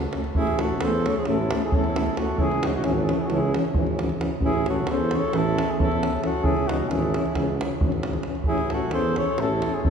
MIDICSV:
0, 0, Header, 1, 7, 480
1, 0, Start_track
1, 0, Tempo, 450789
1, 369, Time_signature, 9, 3, 24, 8
1, 10542, End_track
2, 0, Start_track
2, 0, Title_t, "Flugelhorn"
2, 0, Program_c, 0, 56
2, 0, Note_on_c, 0, 69, 90
2, 157, Note_off_c, 0, 69, 0
2, 382, Note_on_c, 0, 68, 94
2, 652, Note_on_c, 0, 69, 82
2, 668, Note_off_c, 0, 68, 0
2, 885, Note_on_c, 0, 72, 93
2, 901, Note_off_c, 0, 69, 0
2, 1140, Note_on_c, 0, 73, 83
2, 1156, Note_off_c, 0, 72, 0
2, 1268, Note_on_c, 0, 72, 67
2, 1284, Note_off_c, 0, 73, 0
2, 1349, Note_on_c, 0, 69, 103
2, 1365, Note_off_c, 0, 72, 0
2, 1726, Note_off_c, 0, 69, 0
2, 1747, Note_on_c, 0, 68, 83
2, 1865, Note_on_c, 0, 69, 87
2, 1881, Note_off_c, 0, 68, 0
2, 2322, Note_off_c, 0, 69, 0
2, 2347, Note_on_c, 0, 69, 81
2, 2565, Note_on_c, 0, 68, 102
2, 2581, Note_off_c, 0, 69, 0
2, 2830, Note_on_c, 0, 66, 61
2, 2846, Note_off_c, 0, 68, 0
2, 2861, Note_off_c, 0, 66, 0
2, 2867, Note_on_c, 0, 66, 60
2, 2916, Note_off_c, 0, 66, 0
2, 2941, Note_on_c, 0, 66, 78
2, 3032, Note_off_c, 0, 66, 0
2, 3038, Note_on_c, 0, 68, 63
2, 3135, Note_on_c, 0, 69, 55
2, 3151, Note_off_c, 0, 68, 0
2, 3239, Note_on_c, 0, 68, 65
2, 3255, Note_off_c, 0, 69, 0
2, 3336, Note_on_c, 0, 69, 66
2, 3352, Note_off_c, 0, 68, 0
2, 3419, Note_on_c, 0, 68, 69
2, 3435, Note_off_c, 0, 69, 0
2, 3507, Note_on_c, 0, 69, 68
2, 3523, Note_off_c, 0, 68, 0
2, 3591, Note_on_c, 0, 68, 81
2, 3607, Note_off_c, 0, 69, 0
2, 3787, Note_off_c, 0, 68, 0
2, 4744, Note_on_c, 0, 68, 103
2, 4965, Note_off_c, 0, 68, 0
2, 5002, Note_on_c, 0, 69, 80
2, 5228, Note_on_c, 0, 72, 97
2, 5244, Note_off_c, 0, 69, 0
2, 5487, Note_on_c, 0, 73, 94
2, 5503, Note_off_c, 0, 72, 0
2, 5705, Note_on_c, 0, 69, 108
2, 5721, Note_off_c, 0, 73, 0
2, 6070, Note_on_c, 0, 68, 73
2, 6086, Note_off_c, 0, 69, 0
2, 6172, Note_on_c, 0, 69, 98
2, 6188, Note_off_c, 0, 68, 0
2, 6638, Note_off_c, 0, 69, 0
2, 6646, Note_on_c, 0, 69, 87
2, 6854, Note_on_c, 0, 68, 105
2, 6870, Note_off_c, 0, 69, 0
2, 7106, Note_on_c, 0, 66, 80
2, 7122, Note_off_c, 0, 68, 0
2, 7335, Note_on_c, 0, 68, 70
2, 7351, Note_off_c, 0, 66, 0
2, 8092, Note_off_c, 0, 68, 0
2, 9028, Note_on_c, 0, 68, 97
2, 9284, Note_on_c, 0, 69, 81
2, 9300, Note_off_c, 0, 68, 0
2, 9505, Note_off_c, 0, 69, 0
2, 9511, Note_on_c, 0, 72, 100
2, 9751, Note_off_c, 0, 72, 0
2, 9775, Note_on_c, 0, 73, 102
2, 10010, Note_on_c, 0, 69, 113
2, 10026, Note_off_c, 0, 73, 0
2, 10369, Note_on_c, 0, 68, 89
2, 10385, Note_off_c, 0, 69, 0
2, 10488, Note_on_c, 0, 69, 84
2, 10504, Note_off_c, 0, 68, 0
2, 10542, Note_off_c, 0, 69, 0
2, 10542, End_track
3, 0, Start_track
3, 0, Title_t, "Alto saxophone"
3, 0, Program_c, 1, 65
3, 0, Note_on_c, 1, 66, 65
3, 159, Note_off_c, 1, 66, 0
3, 378, Note_on_c, 1, 64, 100
3, 649, Note_on_c, 1, 66, 78
3, 665, Note_off_c, 1, 64, 0
3, 864, Note_on_c, 1, 69, 85
3, 880, Note_off_c, 1, 66, 0
3, 1148, Note_off_c, 1, 69, 0
3, 1148, Note_on_c, 1, 69, 75
3, 1260, Note_on_c, 1, 68, 67
3, 1276, Note_off_c, 1, 69, 0
3, 1354, Note_on_c, 1, 64, 79
3, 1370, Note_off_c, 1, 68, 0
3, 1728, Note_off_c, 1, 64, 0
3, 1750, Note_on_c, 1, 64, 59
3, 1857, Note_off_c, 1, 64, 0
3, 1857, Note_on_c, 1, 64, 88
3, 2318, Note_off_c, 1, 64, 0
3, 2327, Note_on_c, 1, 66, 77
3, 2539, Note_on_c, 1, 64, 94
3, 2555, Note_off_c, 1, 66, 0
3, 2823, Note_on_c, 1, 63, 54
3, 2839, Note_off_c, 1, 64, 0
3, 2846, Note_off_c, 1, 63, 0
3, 2853, Note_on_c, 1, 63, 53
3, 2905, Note_off_c, 1, 63, 0
3, 2922, Note_on_c, 1, 63, 57
3, 3011, Note_off_c, 1, 63, 0
3, 3018, Note_on_c, 1, 64, 57
3, 3110, Note_on_c, 1, 66, 51
3, 3126, Note_off_c, 1, 64, 0
3, 3210, Note_on_c, 1, 64, 54
3, 3226, Note_off_c, 1, 66, 0
3, 3307, Note_on_c, 1, 66, 58
3, 3323, Note_off_c, 1, 64, 0
3, 3378, Note_on_c, 1, 64, 60
3, 3394, Note_off_c, 1, 66, 0
3, 3459, Note_on_c, 1, 66, 58
3, 3475, Note_off_c, 1, 64, 0
3, 3560, Note_on_c, 1, 64, 68
3, 3576, Note_off_c, 1, 66, 0
3, 3772, Note_off_c, 1, 64, 0
3, 4742, Note_on_c, 1, 64, 90
3, 4964, Note_off_c, 1, 64, 0
3, 4995, Note_on_c, 1, 66, 72
3, 5227, Note_on_c, 1, 69, 73
3, 5243, Note_off_c, 1, 66, 0
3, 5496, Note_off_c, 1, 69, 0
3, 5496, Note_on_c, 1, 69, 79
3, 5724, Note_on_c, 1, 64, 92
3, 5740, Note_off_c, 1, 69, 0
3, 6100, Note_off_c, 1, 64, 0
3, 6100, Note_on_c, 1, 64, 52
3, 6192, Note_off_c, 1, 64, 0
3, 6192, Note_on_c, 1, 64, 73
3, 6648, Note_off_c, 1, 64, 0
3, 6671, Note_on_c, 1, 66, 79
3, 6871, Note_on_c, 1, 64, 98
3, 6886, Note_off_c, 1, 66, 0
3, 7146, Note_on_c, 1, 63, 70
3, 7162, Note_off_c, 1, 64, 0
3, 7361, Note_on_c, 1, 64, 70
3, 7377, Note_off_c, 1, 63, 0
3, 8105, Note_off_c, 1, 64, 0
3, 9031, Note_on_c, 1, 64, 84
3, 9303, Note_on_c, 1, 66, 71
3, 9319, Note_off_c, 1, 64, 0
3, 9500, Note_off_c, 1, 66, 0
3, 9506, Note_on_c, 1, 69, 78
3, 9748, Note_off_c, 1, 69, 0
3, 9790, Note_on_c, 1, 69, 72
3, 9997, Note_on_c, 1, 64, 83
3, 10013, Note_off_c, 1, 69, 0
3, 10354, Note_off_c, 1, 64, 0
3, 10354, Note_on_c, 1, 64, 67
3, 10481, Note_off_c, 1, 64, 0
3, 10481, Note_on_c, 1, 64, 72
3, 10542, Note_off_c, 1, 64, 0
3, 10542, End_track
4, 0, Start_track
4, 0, Title_t, "French horn"
4, 0, Program_c, 2, 60
4, 137, Note_on_c, 2, 61, 44
4, 228, Note_off_c, 2, 61, 0
4, 361, Note_on_c, 2, 61, 44
4, 468, Note_off_c, 2, 61, 0
4, 618, Note_on_c, 2, 61, 54
4, 712, Note_off_c, 2, 61, 0
4, 847, Note_on_c, 2, 61, 63
4, 954, Note_off_c, 2, 61, 0
4, 1118, Note_on_c, 2, 61, 55
4, 1210, Note_off_c, 2, 61, 0
4, 1350, Note_on_c, 2, 61, 77
4, 1455, Note_off_c, 2, 61, 0
4, 1627, Note_on_c, 2, 61, 62
4, 1715, Note_off_c, 2, 61, 0
4, 1846, Note_on_c, 2, 61, 61
4, 1944, Note_off_c, 2, 61, 0
4, 2081, Note_on_c, 2, 61, 53
4, 2172, Note_off_c, 2, 61, 0
4, 2307, Note_on_c, 2, 61, 52
4, 2397, Note_off_c, 2, 61, 0
4, 2533, Note_on_c, 2, 61, 71
4, 2638, Note_off_c, 2, 61, 0
4, 2804, Note_on_c, 2, 61, 72
4, 2893, Note_off_c, 2, 61, 0
4, 3004, Note_on_c, 2, 61, 77
4, 3113, Note_off_c, 2, 61, 0
4, 3270, Note_on_c, 2, 61, 74
4, 3364, Note_off_c, 2, 61, 0
4, 3522, Note_on_c, 2, 61, 76
4, 3625, Note_off_c, 2, 61, 0
4, 3785, Note_on_c, 2, 61, 74
4, 3874, Note_off_c, 2, 61, 0
4, 4026, Note_on_c, 2, 61, 61
4, 4120, Note_off_c, 2, 61, 0
4, 4279, Note_on_c, 2, 61, 54
4, 4363, Note_off_c, 2, 61, 0
4, 4488, Note_on_c, 2, 61, 58
4, 4574, Note_off_c, 2, 61, 0
4, 4703, Note_on_c, 2, 61, 74
4, 4806, Note_off_c, 2, 61, 0
4, 4987, Note_on_c, 2, 61, 67
4, 5072, Note_off_c, 2, 61, 0
4, 5208, Note_on_c, 2, 61, 73
4, 5308, Note_off_c, 2, 61, 0
4, 5449, Note_on_c, 2, 61, 67
4, 5540, Note_off_c, 2, 61, 0
4, 5676, Note_on_c, 2, 61, 68
4, 5781, Note_off_c, 2, 61, 0
4, 5922, Note_on_c, 2, 61, 65
4, 6016, Note_off_c, 2, 61, 0
4, 6163, Note_on_c, 2, 61, 60
4, 6262, Note_off_c, 2, 61, 0
4, 6394, Note_on_c, 2, 61, 56
4, 6486, Note_off_c, 2, 61, 0
4, 6620, Note_on_c, 2, 61, 54
4, 6712, Note_off_c, 2, 61, 0
4, 6851, Note_on_c, 2, 61, 71
4, 6957, Note_off_c, 2, 61, 0
4, 7123, Note_on_c, 2, 61, 64
4, 7213, Note_off_c, 2, 61, 0
4, 7347, Note_on_c, 2, 61, 60
4, 7452, Note_off_c, 2, 61, 0
4, 7626, Note_on_c, 2, 61, 71
4, 7714, Note_off_c, 2, 61, 0
4, 7861, Note_on_c, 2, 61, 63
4, 7961, Note_off_c, 2, 61, 0
4, 8123, Note_on_c, 2, 61, 52
4, 8209, Note_off_c, 2, 61, 0
4, 8353, Note_on_c, 2, 61, 54
4, 8446, Note_off_c, 2, 61, 0
4, 8579, Note_on_c, 2, 61, 47
4, 8667, Note_off_c, 2, 61, 0
4, 8805, Note_on_c, 2, 61, 47
4, 8891, Note_off_c, 2, 61, 0
4, 9042, Note_on_c, 2, 61, 61
4, 9142, Note_off_c, 2, 61, 0
4, 9297, Note_on_c, 2, 61, 58
4, 9384, Note_off_c, 2, 61, 0
4, 9511, Note_on_c, 2, 61, 63
4, 9614, Note_off_c, 2, 61, 0
4, 9805, Note_on_c, 2, 61, 61
4, 9888, Note_off_c, 2, 61, 0
4, 10008, Note_on_c, 2, 61, 72
4, 10109, Note_off_c, 2, 61, 0
4, 10266, Note_on_c, 2, 61, 59
4, 10354, Note_off_c, 2, 61, 0
4, 10479, Note_on_c, 2, 61, 62
4, 10542, Note_off_c, 2, 61, 0
4, 10542, End_track
5, 0, Start_track
5, 0, Title_t, "Euphonium"
5, 0, Program_c, 3, 58
5, 177, Note_on_c, 3, 57, 46
5, 260, Note_off_c, 3, 57, 0
5, 400, Note_on_c, 3, 57, 62
5, 499, Note_off_c, 3, 57, 0
5, 664, Note_on_c, 3, 57, 51
5, 749, Note_off_c, 3, 57, 0
5, 908, Note_on_c, 3, 57, 64
5, 1003, Note_off_c, 3, 57, 0
5, 1131, Note_on_c, 3, 57, 51
5, 1221, Note_off_c, 3, 57, 0
5, 1376, Note_on_c, 3, 57, 66
5, 1475, Note_off_c, 3, 57, 0
5, 1643, Note_on_c, 3, 57, 59
5, 1728, Note_off_c, 3, 57, 0
5, 1876, Note_on_c, 3, 57, 64
5, 1968, Note_off_c, 3, 57, 0
5, 2124, Note_on_c, 3, 57, 61
5, 2206, Note_off_c, 3, 57, 0
5, 2321, Note_on_c, 3, 57, 56
5, 2408, Note_off_c, 3, 57, 0
5, 2536, Note_on_c, 3, 52, 64
5, 2640, Note_off_c, 3, 52, 0
5, 2791, Note_on_c, 3, 52, 56
5, 2883, Note_off_c, 3, 52, 0
5, 3026, Note_on_c, 3, 52, 69
5, 3130, Note_off_c, 3, 52, 0
5, 3290, Note_on_c, 3, 52, 73
5, 3380, Note_off_c, 3, 52, 0
5, 3505, Note_on_c, 3, 52, 77
5, 3612, Note_off_c, 3, 52, 0
5, 3759, Note_on_c, 3, 52, 64
5, 3854, Note_off_c, 3, 52, 0
5, 3995, Note_on_c, 3, 52, 68
5, 4095, Note_off_c, 3, 52, 0
5, 4250, Note_on_c, 3, 52, 59
5, 4339, Note_off_c, 3, 52, 0
5, 4479, Note_on_c, 3, 52, 62
5, 4567, Note_off_c, 3, 52, 0
5, 4718, Note_on_c, 3, 52, 66
5, 4819, Note_off_c, 3, 52, 0
5, 4977, Note_on_c, 3, 52, 67
5, 5064, Note_off_c, 3, 52, 0
5, 5205, Note_on_c, 3, 52, 66
5, 5306, Note_off_c, 3, 52, 0
5, 5461, Note_on_c, 3, 52, 70
5, 5549, Note_off_c, 3, 52, 0
5, 5675, Note_on_c, 3, 52, 81
5, 5780, Note_off_c, 3, 52, 0
5, 5938, Note_on_c, 3, 52, 64
5, 6029, Note_off_c, 3, 52, 0
5, 6159, Note_on_c, 3, 52, 60
5, 6259, Note_off_c, 3, 52, 0
5, 6390, Note_on_c, 3, 52, 59
5, 6483, Note_off_c, 3, 52, 0
5, 6630, Note_on_c, 3, 52, 51
5, 6720, Note_off_c, 3, 52, 0
5, 6855, Note_on_c, 3, 52, 63
5, 6961, Note_off_c, 3, 52, 0
5, 7124, Note_on_c, 3, 52, 56
5, 7214, Note_off_c, 3, 52, 0
5, 7361, Note_on_c, 3, 52, 65
5, 7463, Note_off_c, 3, 52, 0
5, 7629, Note_on_c, 3, 52, 56
5, 7716, Note_off_c, 3, 52, 0
5, 7828, Note_on_c, 3, 52, 55
5, 7935, Note_off_c, 3, 52, 0
5, 8095, Note_on_c, 3, 52, 54
5, 8187, Note_off_c, 3, 52, 0
5, 8328, Note_on_c, 3, 52, 63
5, 8426, Note_off_c, 3, 52, 0
5, 8582, Note_on_c, 3, 52, 48
5, 8669, Note_off_c, 3, 52, 0
5, 8811, Note_on_c, 3, 52, 45
5, 8896, Note_off_c, 3, 52, 0
5, 9032, Note_on_c, 3, 52, 59
5, 9133, Note_off_c, 3, 52, 0
5, 9289, Note_on_c, 3, 52, 49
5, 9377, Note_off_c, 3, 52, 0
5, 9530, Note_on_c, 3, 52, 52
5, 9630, Note_off_c, 3, 52, 0
5, 9794, Note_on_c, 3, 52, 58
5, 9879, Note_off_c, 3, 52, 0
5, 10021, Note_on_c, 3, 52, 63
5, 10120, Note_off_c, 3, 52, 0
5, 10272, Note_on_c, 3, 52, 53
5, 10359, Note_off_c, 3, 52, 0
5, 10504, Note_on_c, 3, 52, 60
5, 10542, Note_off_c, 3, 52, 0
5, 10542, End_track
6, 0, Start_track
6, 0, Title_t, "Tuba"
6, 0, Program_c, 4, 58
6, 379, Note_on_c, 4, 33, 86
6, 869, Note_on_c, 4, 40, 111
6, 885, Note_off_c, 4, 33, 0
6, 1136, Note_off_c, 4, 40, 0
6, 1355, Note_on_c, 4, 33, 97
6, 1623, Note_off_c, 4, 33, 0
6, 1830, Note_on_c, 4, 40, 77
6, 2214, Note_off_c, 4, 40, 0
6, 2527, Note_on_c, 4, 37, 88
6, 3024, Note_on_c, 4, 32, 106
6, 3040, Note_off_c, 4, 37, 0
6, 3293, Note_off_c, 4, 32, 0
6, 3526, Note_on_c, 4, 37, 102
6, 3792, Note_off_c, 4, 37, 0
6, 4001, Note_on_c, 4, 32, 83
6, 4383, Note_off_c, 4, 32, 0
6, 4687, Note_on_c, 4, 33, 87
6, 5192, Note_on_c, 4, 40, 101
6, 5208, Note_off_c, 4, 33, 0
6, 5460, Note_off_c, 4, 40, 0
6, 5677, Note_on_c, 4, 33, 98
6, 5946, Note_off_c, 4, 33, 0
6, 6161, Note_on_c, 4, 40, 80
6, 6543, Note_off_c, 4, 40, 0
6, 6851, Note_on_c, 4, 37, 78
6, 7331, Note_on_c, 4, 32, 98
6, 7347, Note_off_c, 4, 37, 0
6, 7605, Note_off_c, 4, 32, 0
6, 7840, Note_on_c, 4, 37, 97
6, 8108, Note_off_c, 4, 37, 0
6, 8311, Note_on_c, 4, 32, 81
6, 8695, Note_off_c, 4, 32, 0
6, 9007, Note_on_c, 4, 33, 78
6, 9502, Note_on_c, 4, 40, 108
6, 9518, Note_off_c, 4, 33, 0
6, 9771, Note_off_c, 4, 40, 0
6, 9985, Note_on_c, 4, 33, 104
6, 10256, Note_off_c, 4, 33, 0
6, 10488, Note_on_c, 4, 40, 89
6, 10542, Note_off_c, 4, 40, 0
6, 10542, End_track
7, 0, Start_track
7, 0, Title_t, "Davul"
7, 31, Note_on_c, 9, 37, 25
7, 135, Note_off_c, 9, 37, 0
7, 135, Note_on_c, 9, 37, 51
7, 242, Note_off_c, 9, 37, 0
7, 257, Note_on_c, 9, 37, 27
7, 363, Note_off_c, 9, 37, 0
7, 372, Note_on_c, 9, 43, 75
7, 478, Note_off_c, 9, 43, 0
7, 500, Note_on_c, 9, 37, 33
7, 607, Note_off_c, 9, 37, 0
7, 626, Note_on_c, 9, 37, 69
7, 732, Note_off_c, 9, 37, 0
7, 858, Note_on_c, 9, 37, 72
7, 964, Note_off_c, 9, 37, 0
7, 1127, Note_on_c, 9, 37, 61
7, 1233, Note_off_c, 9, 37, 0
7, 1335, Note_on_c, 9, 37, 56
7, 1442, Note_off_c, 9, 37, 0
7, 1603, Note_on_c, 9, 37, 82
7, 1710, Note_off_c, 9, 37, 0
7, 1725, Note_on_c, 9, 37, 30
7, 1832, Note_off_c, 9, 37, 0
7, 1833, Note_on_c, 9, 43, 92
7, 1940, Note_off_c, 9, 43, 0
7, 1958, Note_on_c, 9, 37, 26
7, 2065, Note_off_c, 9, 37, 0
7, 2090, Note_on_c, 9, 37, 73
7, 2196, Note_off_c, 9, 37, 0
7, 2199, Note_on_c, 9, 37, 25
7, 2306, Note_off_c, 9, 37, 0
7, 2314, Note_on_c, 9, 37, 58
7, 2420, Note_off_c, 9, 37, 0
7, 2538, Note_on_c, 9, 43, 69
7, 2645, Note_off_c, 9, 43, 0
7, 2678, Note_on_c, 9, 37, 26
7, 2784, Note_off_c, 9, 37, 0
7, 2800, Note_on_c, 9, 37, 72
7, 2906, Note_off_c, 9, 37, 0
7, 3022, Note_on_c, 9, 37, 56
7, 3129, Note_off_c, 9, 37, 0
7, 3289, Note_on_c, 9, 37, 58
7, 3396, Note_off_c, 9, 37, 0
7, 3511, Note_on_c, 9, 37, 48
7, 3617, Note_off_c, 9, 37, 0
7, 3774, Note_on_c, 9, 37, 66
7, 3880, Note_off_c, 9, 37, 0
7, 3886, Note_on_c, 9, 37, 24
7, 3987, Note_on_c, 9, 43, 84
7, 3992, Note_off_c, 9, 37, 0
7, 4094, Note_off_c, 9, 43, 0
7, 4117, Note_on_c, 9, 37, 20
7, 4223, Note_off_c, 9, 37, 0
7, 4248, Note_on_c, 9, 37, 61
7, 4355, Note_off_c, 9, 37, 0
7, 4358, Note_on_c, 9, 37, 27
7, 4465, Note_off_c, 9, 37, 0
7, 4483, Note_on_c, 9, 37, 61
7, 4589, Note_off_c, 9, 37, 0
7, 4697, Note_on_c, 9, 43, 65
7, 4803, Note_off_c, 9, 43, 0
7, 4829, Note_on_c, 9, 37, 23
7, 4936, Note_off_c, 9, 37, 0
7, 4964, Note_on_c, 9, 37, 56
7, 5071, Note_off_c, 9, 37, 0
7, 5184, Note_on_c, 9, 37, 66
7, 5290, Note_off_c, 9, 37, 0
7, 5441, Note_on_c, 9, 37, 61
7, 5547, Note_off_c, 9, 37, 0
7, 5679, Note_on_c, 9, 37, 60
7, 5786, Note_off_c, 9, 37, 0
7, 5947, Note_on_c, 9, 37, 71
7, 6053, Note_off_c, 9, 37, 0
7, 6076, Note_on_c, 9, 37, 23
7, 6177, Note_on_c, 9, 43, 84
7, 6182, Note_off_c, 9, 37, 0
7, 6284, Note_off_c, 9, 43, 0
7, 6299, Note_on_c, 9, 37, 26
7, 6405, Note_off_c, 9, 37, 0
7, 6422, Note_on_c, 9, 37, 64
7, 6524, Note_off_c, 9, 37, 0
7, 6524, Note_on_c, 9, 37, 24
7, 6631, Note_off_c, 9, 37, 0
7, 6639, Note_on_c, 9, 37, 51
7, 6746, Note_off_c, 9, 37, 0
7, 6858, Note_on_c, 9, 43, 77
7, 6965, Note_off_c, 9, 43, 0
7, 6991, Note_on_c, 9, 37, 22
7, 7098, Note_off_c, 9, 37, 0
7, 7127, Note_on_c, 9, 37, 72
7, 7234, Note_off_c, 9, 37, 0
7, 7357, Note_on_c, 9, 37, 58
7, 7464, Note_off_c, 9, 37, 0
7, 7478, Note_on_c, 9, 37, 23
7, 7585, Note_off_c, 9, 37, 0
7, 7606, Note_on_c, 9, 37, 62
7, 7713, Note_off_c, 9, 37, 0
7, 7725, Note_on_c, 9, 37, 24
7, 7831, Note_off_c, 9, 37, 0
7, 7831, Note_on_c, 9, 37, 59
7, 7831, Note_on_c, 9, 43, 50
7, 7937, Note_off_c, 9, 37, 0
7, 7937, Note_off_c, 9, 43, 0
7, 8102, Note_on_c, 9, 37, 72
7, 8209, Note_off_c, 9, 37, 0
7, 8213, Note_on_c, 9, 37, 25
7, 8317, Note_on_c, 9, 43, 89
7, 8319, Note_off_c, 9, 37, 0
7, 8423, Note_off_c, 9, 43, 0
7, 8434, Note_on_c, 9, 37, 26
7, 8540, Note_off_c, 9, 37, 0
7, 8553, Note_on_c, 9, 37, 61
7, 8660, Note_off_c, 9, 37, 0
7, 8660, Note_on_c, 9, 37, 26
7, 8766, Note_off_c, 9, 37, 0
7, 8766, Note_on_c, 9, 37, 46
7, 8873, Note_off_c, 9, 37, 0
7, 8892, Note_on_c, 9, 37, 21
7, 8986, Note_on_c, 9, 43, 70
7, 8998, Note_off_c, 9, 37, 0
7, 9092, Note_off_c, 9, 43, 0
7, 9133, Note_on_c, 9, 37, 22
7, 9239, Note_off_c, 9, 37, 0
7, 9264, Note_on_c, 9, 37, 54
7, 9371, Note_off_c, 9, 37, 0
7, 9489, Note_on_c, 9, 37, 61
7, 9595, Note_off_c, 9, 37, 0
7, 9755, Note_on_c, 9, 37, 56
7, 9862, Note_off_c, 9, 37, 0
7, 9988, Note_on_c, 9, 37, 55
7, 10095, Note_off_c, 9, 37, 0
7, 10243, Note_on_c, 9, 37, 59
7, 10350, Note_off_c, 9, 37, 0
7, 10368, Note_on_c, 9, 37, 21
7, 10474, Note_off_c, 9, 37, 0
7, 10486, Note_on_c, 9, 43, 81
7, 10542, Note_off_c, 9, 43, 0
7, 10542, End_track
0, 0, End_of_file